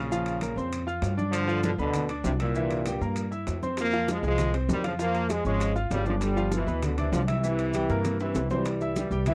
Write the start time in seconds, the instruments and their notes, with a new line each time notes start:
Already playing: upright bass A#1, trombone section A#2 C#3
0.11 grand piano F3 F4 F5, high conga, maracas
0.26 high conga, high timbale, maracas
0.41 grand piano A#3 A#4 A#5, high conga, high timbale, low timbale, maracas
0.56 upright bass F2, grand piano C4 C5 C6, high conga, maracas
0.73 high conga, high timbale, maracas
0.87 grand piano F4 F5 F6, high conga, maracas
1.02 upright bass G2, high conga, high timbale, low timbale, maracas
1.17 grand piano D4 D5 D6, high conga, maracas
1.32 trombone section D3 F3, high conga, high timbale, maracas
1.48 grand piano F3 F4 F5, maracas
1.63 trombone section B2 D3, high conga, high timbale, low timbale, maracas
1.78 upright bass D2, trombone section B2 D3, grand piano B3 B4 B5, maracas
1.94 high conga, low conga, high timbale, maracas
2.09 grand piano D4 D5 D6, high conga, high timbale, maracas
2.24 upright bass C2, trombone section G2 C3, high conga, low timbale, maracas
2.39 trombone section G2 A#2, grand piano E4 E5 E6, high conga, high timbale, maracas
2.55 grand piano E3 E4 E5, high conga, maracas
2.71 high conga, high timbale, maracas
2.86 grand piano G3 G4 G5, high conga, high timbale, low timbale, maracas
3.01 upright bass G2, grand piano A#3 A#4 A#5, high conga, maracas
3.16 high conga, high timbale, maracas
3.31 grand piano E4 E5 E6, high conga, maracas
3.47 upright bass F2, high conga, high timbale, low timbale, maracas
3.63 grand piano C4 C5 C6, high conga, maracas
3.77 trombone section F3, high bongo, high conga, high timbale, maracas
3.81 trombone section A#3
3.93 grand piano F3 F4 F5, high bongo, high conga, maracas
4.08 trombone section F3 G#3, high bongo, high conga, high timbale, low timbale, maracas
4.23 upright bass C2, grand piano G#3 G#4 G#5, maracas
4.27 trombone section F3 G#3
4.38 high bongo, high conga, low conga, high timbale, maracas
4.53 grand piano C4 C5 C6, high bongo, high conga, high timbale, maracas
4.68 upright bass F2, trombone section D#3 G3, high bongo, low bongo, high conga, low timbale, maracas
4.84 trombone section C#3 F3, grand piano F4 F5 F6, high bongo, high conga, high timbale, maracas
4.99 grand piano F3 F4 F5, trombone section F3 A#3, high bongo, maracas
5.15 high bongo, high conga, high timbale, maracas
5.30 trombone section F3 G#3, grand piano G#3 G#4 G#5, high bongo, high conga, high timbale, low timbale, maracas
5.45 upright bass G#1, trombone section F3 G#3, grand piano C#4 C#5 C#6, high conga, maracas
5.60 high bongo, high conga, high timbale, maracas
5.76 grand piano F4 F5 F6, high bongo, high conga, maracas
5.91 upright bass G1, trombone section C#3 G3, high bongo, low bongo, high conga, high timbale, low timbale, maracas
6.05 trombone section C#3 F3, grand piano D4 D5 D6, high bongo, high conga, maracas
6.21 trombone section D3 G3, high bongo, high conga, high timbale, maracas
6.36 grand piano F3 F4 F5, high bongo, high conga, maracas
6.52 trombone section B2 E3, high bongo, high conga, high timbale, low timbale, maracas
6.67 upright bass D2, grand piano B3 B4 B5, maracas
6.83 trombone section B2 D3, high bongo, high conga, low conga, high timbale, maracas
6.98 trombone section C3 E3, grand piano D4 D5 D6, high bongo, high conga, low conga, high timbale, maracas
7.12 upright bass C2, trombone section D3 F3, high bongo, low bongo, high conga, low timbale, maracas
7.27 trombone section C3 E3, grand piano E4 E5 E6, high bongo, high conga, high timbale, maracas
7.43 grand piano E3 E4 E5, high bongo, high conga, maracas
7.59 high conga, high timbale, maracas
7.73 grand piano G3 G4 G5, high conga, high timbale, low timbale, maracas
7.89 upright bass G2, grand piano A#3 A#4 A#5, high bongo, high conga, maracas
8.05 low bongo, high timbale, maracas
8.20 trombone section C3 E3, grand piano E4 E5 E6, high conga, high timbale, maracas
8.35 upright bass C2, low bongo, high timbale, maracas
8.50 trombone section E3 G3, grand piano C4 C5 C6, low bongo, high conga, low timbale, maracas
8.65 high bongo, high conga, high timbale, maracas
8.81 grand piano E4 E5 E6, high bongo, high conga, maracas
8.96 trombone section E3 G3, high bongo, high conga, high timbale, low timbale, maracas
9.11 upright bass C2, grand piano G3 G4 G5, maracas
9.26 trombone section C3 E3, grand piano E3 E4 E5, high bongo, high conga, low conga, high timbale, maracas